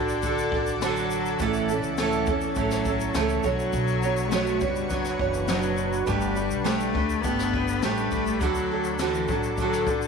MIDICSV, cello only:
0, 0, Header, 1, 2, 480
1, 0, Start_track
1, 0, Tempo, 584226
1, 1150, Time_signature, 4, 2, 24, 8
1, 8278, End_track
2, 0, Start_track
2, 0, Title_t, "Cello"
2, 0, Program_c, 0, 42
2, 0, Note_on_c, 0, 50, 88
2, 651, Note_off_c, 0, 50, 0
2, 655, Note_on_c, 0, 54, 95
2, 1149, Note_on_c, 0, 52, 96
2, 1162, Note_off_c, 0, 54, 0
2, 1627, Note_off_c, 0, 52, 0
2, 1632, Note_on_c, 0, 52, 95
2, 2112, Note_on_c, 0, 54, 92
2, 2124, Note_off_c, 0, 52, 0
2, 2592, Note_on_c, 0, 52, 93
2, 2604, Note_off_c, 0, 54, 0
2, 2844, Note_on_c, 0, 54, 107
2, 2856, Note_off_c, 0, 52, 0
2, 3540, Note_on_c, 0, 57, 97
2, 3553, Note_off_c, 0, 54, 0
2, 3789, Note_on_c, 0, 55, 89
2, 3801, Note_off_c, 0, 57, 0
2, 4026, Note_on_c, 0, 54, 93
2, 4038, Note_off_c, 0, 55, 0
2, 4268, Note_on_c, 0, 52, 90
2, 4281, Note_off_c, 0, 54, 0
2, 4514, Note_on_c, 0, 54, 94
2, 4526, Note_off_c, 0, 52, 0
2, 4984, Note_off_c, 0, 54, 0
2, 4989, Note_on_c, 0, 55, 109
2, 5473, Note_on_c, 0, 57, 113
2, 5485, Note_off_c, 0, 55, 0
2, 5938, Note_on_c, 0, 59, 106
2, 5950, Note_off_c, 0, 57, 0
2, 6428, Note_on_c, 0, 57, 104
2, 6440, Note_off_c, 0, 59, 0
2, 6913, Note_on_c, 0, 54, 101
2, 6926, Note_off_c, 0, 57, 0
2, 7384, Note_on_c, 0, 52, 103
2, 7396, Note_off_c, 0, 54, 0
2, 7632, Note_on_c, 0, 54, 92
2, 7644, Note_off_c, 0, 52, 0
2, 7866, Note_off_c, 0, 54, 0
2, 7871, Note_on_c, 0, 54, 102
2, 8107, Note_on_c, 0, 50, 95
2, 8119, Note_off_c, 0, 54, 0
2, 8278, Note_off_c, 0, 50, 0
2, 8278, End_track
0, 0, End_of_file